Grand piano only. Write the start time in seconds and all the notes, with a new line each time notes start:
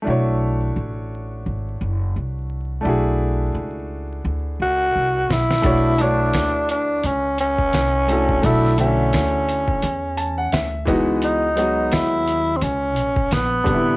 0.02 A3 D4
0.06 E4 F#4 C#5
2.81 A3 D4
2.85 E4 F#4 G#4
5.62 A3 D4 E4 F#4
5.66 C#5
5.98 A3 D4 E4 F#4
6.02 C#5
8.07 A3 D4 E4 F#4
8.11 A4
8.42 A3 D4 E4 F#4 A4
8.77 D3 A3 E4 F#4 E5
10.17 A5
10.38 F#5
10.53 E5
10.85 E3 G#3 B3 D#4 D#5
10.90 F#4
11.55 F#3 G#3 B3 F#4 D#5
13.64 C3 D3 G3 B3 D4
13.74 E4